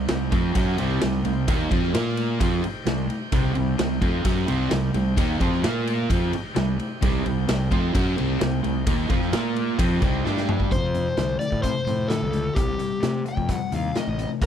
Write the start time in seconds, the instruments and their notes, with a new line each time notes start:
Already playing: tonewheel organ D#4 G4 C5 G5
0.08 fingered electric bass C2, overdriven electric guitar C3 G3, snare, ride
0.32 fingered electric bass F2, overdriven electric guitar F3 C4 F4, kick, ride
0.55 fingered electric bass F#2, overdriven electric guitar F#3 C#4 F#4, kick, ride
0.78 fingered electric bass C2, overdriven electric guitar C3 G3 C4, ride
1.01 fingered electric bass C2, overdriven electric guitar C3 G3, snare, ride
1.25 fingered electric bass C2, overdriven electric guitar C3 G3, ride
1.48 fingered electric bass D#2, overdriven electric guitar D#3 A#3 D#4, kick, ride
1.71 fingered electric bass F2, overdriven electric guitar F3 C4 F4, kick, ride
1.83 snare
1.93 fingered electric bass A#2, overdriven electric guitar A#3 F4 A#4, tonewheel organ F4 A#4 F5, snare, ride
2.17 ride
2.40 fingered electric bass F2, overdriven electric guitar F3 C4 F4, tonewheel organ D#4 G4 C5 G5, kick, ride
2.63 muted distorted electric guitar stroke, muted overdriven electric guitar stroke, muted fingered electric bass stroke, ride
2.86 fingered electric bass C2, overdriven electric guitar C3 G3, snare, ride
3.10 ride
3.32 fingered electric bass C2, overdriven electric guitar C3 G3 C4, kick, ride
3.55 fingered electric bass C2, overdriven electric guitar C3 G3, ride
3.78 fingered electric bass C2, overdriven electric guitar C3 G3, snare, ride
4.01 fingered electric bass F2, overdriven electric guitar F3 C4 F4, kick, ride
4.24 fingered electric bass F#2, overdriven electric guitar F#3 C#4 F#4, kick, ride
4.48 fingered electric bass C2, overdriven electric guitar C3 G3 C4, ride
4.71 fingered electric bass C2, overdriven electric guitar C3 G3, snare, ride
4.94 fingered electric bass C2, overdriven electric guitar C3 G3, ride
5.16 fingered electric bass D#2, overdriven electric guitar D#3 A#3 D#4, kick, ride
5.40 fingered electric bass F2, overdriven electric guitar F3 C4 F4, kick, ride
5.53 snare
5.63 fingered electric bass A#2, overdriven electric guitar A#3 F4 A#4, tonewheel organ F4 A#4 F5, snare, ride
5.87 snare, ride
6.09 fingered electric bass F2, overdriven electric guitar F3 C4 F4, tonewheel organ D#4 G4 C5 G5, kick, ride
6.33 muted overdriven electric guitar stroke, muted distorted electric guitar stroke, muted fingered electric bass stroke, ride
6.55 fingered electric bass C2, overdriven electric guitar C3 G3, snare, ride
6.79 ride
7.01 fingered electric bass C2, overdriven electric guitar C3 G3 C4, kick, ride
7.25 fingered electric bass C2, overdriven electric guitar C3 G3, ride
7.48 fingered electric bass C2, overdriven electric guitar C3 G3, snare, ride
7.71 fingered electric bass F2, overdriven electric guitar F3 C4 F4, kick, ride
7.94 fingered electric bass F#2, overdriven electric guitar F#3 C#4 F#4, kick, ride
8.17 fingered electric bass C2, overdriven electric guitar C3 G3 C4, ride
8.40 fingered electric bass C2, overdriven electric guitar C3 G3, snare, ride
8.64 fingered electric bass C2, overdriven electric guitar C3 G3, ride
8.87 fingered electric bass D#2, overdriven electric guitar D#3 A#3 D#4, kick, ride
9.09 fingered electric bass F2, overdriven electric guitar F3 C4 F4, kick, ride
9.22 snare
9.31 fingered electric bass A#2, overdriven electric guitar A#3 F4 A#4, tonewheel organ F4 A#4 F5, snare, ride
9.56 ride
9.77 fingered electric bass F2, overdriven electric guitar F3 C4 F4, tonewheel organ C4 D#4 G4 D#5, kick, ride
10.01 fingered electric bass C2, overdriven electric guitar C3 G3 C4, kick, ride
10.24 fingered electric bass G2, overdriven electric guitar G3 D4 G4, tonewheel organ D4 G4 D5, snare
10.37 snare
10.49 mid tom
10.60 kick
10.70 overdriven electric guitar F2 C3, fingered electric bass F2, electric slide guitar C5, kick, closed hi-hat
10.94 overdriven electric guitar F2 C3, closed hi-hat
11.17 fingered electric bass C2, overdriven electric guitar F2 D3, snare, closed hi-hat
11.39 overdriven electric guitar F2 D3, electric slide guitar D5, closed hi-hat
11.52 fingered electric bass A2, kick
11.63 overdriven electric guitar F2 C3, electric slide guitar C5, kick, closed hi-hat
11.87 overdriven electric guitar F2 C3, fingered electric bass A2, closed hi-hat
12.08 overdriven electric guitar F2 D3, electric slide guitar A4, snare, closed hi-hat
12.22 fingered electric bass C#2
12.33 overdriven electric guitar F2 D3, closed hi-hat
12.55 fingered electric bass C2, overdriven electric guitar C3 G3, electric slide guitar G4, kick, closed hi-hat
12.79 overdriven electric guitar C3 G3, closed hi-hat
13.01 overdriven electric guitar C3 A3, fingered electric bass C3, snare, closed hi-hat
13.25 overdriven electric guitar C3 A3, lead electric guitar G5, closed hi-hat
13.37 fingered electric bass F2, kick
13.48 overdriven electric guitar C3 G3, lead electric guitar F#5, kick, closed hi-hat
13.72 fingered electric bass D#2, overdriven electric guitar C3 G3, lead electric guitar F5, closed hi-hat
13.95 overdriven electric guitar C3 A3, lead electric guitar D#5, snare, closed hi-hat
14.07 fingered electric bass A1
14.19 overdriven electric guitar C3 A3, closed hi-hat
14.41 fingered electric bass G1, overdriven electric guitar G2 D3, kick, closed hi-hat